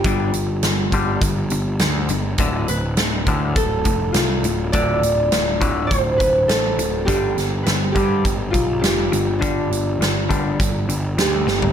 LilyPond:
<<
  \new Staff \with { instrumentName = "Harp" } { \time 4/4 \key g \mixolydian \tempo 4 = 102 g'2. r4 | r8 b'4. a'4 f'8. r16 | d''2 c''8 b'8 a'8. r16 | g'4 b'8 g'4 f'8 g'4 |
d'2. g'4 | }
  \new Staff \with { instrumentName = "Clean electric guitar" } { \clef bass \time 4/4 \key g \mixolydian <g, d g>8 <g, d>8 <g, d>8 <g, d g>8 <g, d>8 <g, d>8 <g, d>8 <g, d>8 | <d, a, d>8 <d, a,>8 <d, a,>8 <d, a, d>8 <d, a,>8 <d, a,>8 <d, a,>8 <d, a,>8 | <d, a, d>8 <d, a,>8 <d, a,>8 <d, a, d>8 <d, a,>8 <d, a,>8 <d, a,>8 <d, a,>8 | <g, d g>8 <g, d>8 <g, d>8 <g, d g>8 <g, d>8 <g, d>8 <g, d>8 <g, d>8 |
<g, d g>8 <g, d>8 <g, d>8 <g, d g>8 d8 <g, d>8 <g, d>8 <g, d>8 | }
  \new Staff \with { instrumentName = "Picked electric bass" } { \clef bass \time 4/4 \key g \mixolydian g,,8 g,,8 g,,8 g,,8 g,,8 g,,8 d,8 g,,8 | d,,8 d,,8 d,,8 d,8 d,,8 f,,8 c,8 d,,8 | d,,8 d,,8 d,,8 d,,8 d,,8 d,,8 a,,8 d,,8 | g,,8 g,,8 g,,8 g,8 g,,8 b,,8 f,,8 g,,8 |
g,,8 g,,8 g,,8 g,,8 g,,8 g,,8 d,8 g,,8 | }
  \new DrumStaff \with { instrumentName = "Drums" } \drummode { \time 4/4 <hh bd>8 hh8 <hh sn>8 <hh bd>8 <hh bd>8 hh8 <hh sn>8 hh8 | <hh bd>8 hh8 <hh sn>8 <hh bd>8 <hh bd>8 <hh bd>8 <hh sn>8 hh8 | <hh bd>8 hh8 <hh sn>8 <hh bd>8 <hh bd>8 <hh bd>8 <hh sn>8 hh8 | <hh bd>8 <hh sn>8 <hh sn>8 <hh bd>8 <hh bd>8 <hh bd>8 <hh sn>8 hh8 |
<hh bd>8 hh8 <hh sn>8 <hh bd>8 <hh bd>8 hh8 <hh sn>8 sn16 tomfh16 | }
>>